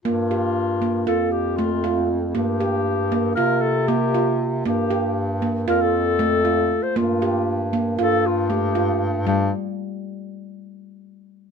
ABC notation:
X:1
M:9/8
L:1/16
Q:3/8=78
K:Gm
V:1 name="Clarinet"
F8 A2 G2 F4 z2 | G8 B2 A2 G4 z2 | G6 z2 B A8 c | F6 z2 A2 F2 G4 z2 |
G2 z16 |]
V:2 name="Handpan"
B,2 G4 B,2 F4 A,2 F4 | B,2 G4 B,2 F4 B,2 F4 | B,2 G4 B,2 F4 A,2 F4 | B,2 G4 B,2 F4 A,2 F4 |
G,2 z16 |]
V:3 name="Bass clarinet" clef=bass
G,,8 F,,8- F,,2 | G,,8 C,8- C,2 | G,,8 F,,8- F,,2 | G,,8 G,,8- G,,2 |
G,,2 z16 |]